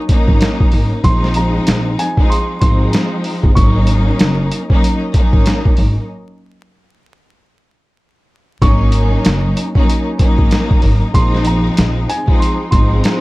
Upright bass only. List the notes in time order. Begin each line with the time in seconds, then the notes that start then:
0.28 G#1
0.73 G#1
1.04 A#1
1.68 A#1
2.62 G#1
3.44 G1
3.57 G#1
4.20 F#1
5.33 G#1
5.78 G#1
8.62 G#1
9.26 F#1
10.39 G#1
10.84 G#1
11.15 A#1
11.78 A#1
12.72 G#1